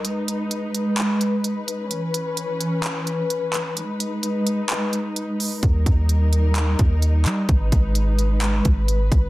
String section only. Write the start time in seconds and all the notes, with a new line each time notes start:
Already playing: D#4
0.05 G#3 B4
1.91 E3 C#4
3.77 G#3 D#4
5.63 G3 D#4 A#4
7.49 G#3 B4